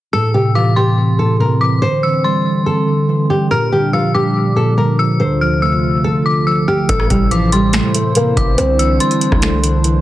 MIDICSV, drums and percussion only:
0, 0, Header, 1, 2, 480
1, 0, Start_track
1, 0, Tempo, 422535
1, 148, Time_signature, 4, 2, 24, 8
1, 11374, End_track
2, 0, Start_track
2, 0, Title_t, "Drums"
2, 7827, Note_on_c, 9, 42, 85
2, 7828, Note_on_c, 9, 36, 115
2, 7941, Note_off_c, 9, 36, 0
2, 7941, Note_off_c, 9, 42, 0
2, 7948, Note_on_c, 9, 37, 93
2, 8061, Note_off_c, 9, 37, 0
2, 8068, Note_on_c, 9, 36, 105
2, 8069, Note_on_c, 9, 42, 83
2, 8182, Note_off_c, 9, 36, 0
2, 8183, Note_off_c, 9, 42, 0
2, 8307, Note_on_c, 9, 42, 68
2, 8421, Note_off_c, 9, 42, 0
2, 8547, Note_on_c, 9, 42, 76
2, 8661, Note_off_c, 9, 42, 0
2, 8783, Note_on_c, 9, 42, 90
2, 8788, Note_on_c, 9, 38, 123
2, 8796, Note_on_c, 9, 26, 98
2, 8896, Note_off_c, 9, 42, 0
2, 8902, Note_off_c, 9, 38, 0
2, 8910, Note_off_c, 9, 26, 0
2, 9026, Note_on_c, 9, 42, 92
2, 9139, Note_off_c, 9, 42, 0
2, 9261, Note_on_c, 9, 42, 77
2, 9374, Note_off_c, 9, 42, 0
2, 9507, Note_on_c, 9, 36, 101
2, 9509, Note_on_c, 9, 42, 65
2, 9621, Note_off_c, 9, 36, 0
2, 9623, Note_off_c, 9, 42, 0
2, 9747, Note_on_c, 9, 42, 85
2, 9861, Note_off_c, 9, 42, 0
2, 9989, Note_on_c, 9, 42, 85
2, 10103, Note_off_c, 9, 42, 0
2, 10228, Note_on_c, 9, 42, 71
2, 10341, Note_off_c, 9, 42, 0
2, 10348, Note_on_c, 9, 42, 43
2, 10461, Note_off_c, 9, 42, 0
2, 10467, Note_on_c, 9, 42, 76
2, 10580, Note_off_c, 9, 42, 0
2, 10588, Note_on_c, 9, 36, 104
2, 10588, Note_on_c, 9, 37, 68
2, 10701, Note_off_c, 9, 36, 0
2, 10701, Note_off_c, 9, 37, 0
2, 10703, Note_on_c, 9, 42, 91
2, 10708, Note_on_c, 9, 38, 121
2, 10716, Note_on_c, 9, 26, 98
2, 10816, Note_off_c, 9, 42, 0
2, 10822, Note_off_c, 9, 38, 0
2, 10830, Note_off_c, 9, 26, 0
2, 10946, Note_on_c, 9, 42, 92
2, 11059, Note_off_c, 9, 42, 0
2, 11181, Note_on_c, 9, 42, 76
2, 11294, Note_off_c, 9, 42, 0
2, 11374, End_track
0, 0, End_of_file